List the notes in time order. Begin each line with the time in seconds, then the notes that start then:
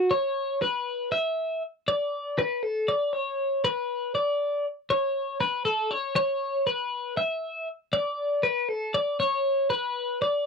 Already playing: F#4
0.11 C#5
0.62 B4
1.12 E5
1.88 D5
2.39 B4
2.63 A4
2.88 D5
3.13 C#5
3.65 B4
4.15 D5
4.90 C#5
5.41 B4
5.65 A4
5.91 C#5
6.16 C#5
6.67 B4
7.17 E5
7.93 D5
8.43 B4
8.69 A4
8.94 D5
9.20 C#5
9.70 B4
10.22 D5